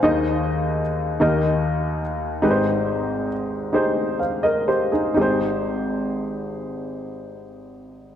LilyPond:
<<
  \new Staff \with { instrumentName = "Grand piano" } { \time 6/8 \key aes \major \tempo 4. = 44 << { f''16 r2 r8. | r2 <c'' f''>16 <bes' ees''>16 <g' c''>16 <ees' aes'>16~ | <ees' aes'>16 r2 r8. | } \\ { <ees' aes' c'' ees''>4 r8 <ees' g' bes' ees''>4 r8 | <ees' g' aes' ces'' c''>4 r8 <ees' g' aes' c''>8 r4 | <ees' g' aes' c''>2. | } >> }
  \new Staff \with { instrumentName = "Grand piano" } { \clef bass \time 6/8 \key aes \major <ees, ees>4. <ees, ees>4. | <aes,, aes,>2. | aes,,2. | }
>>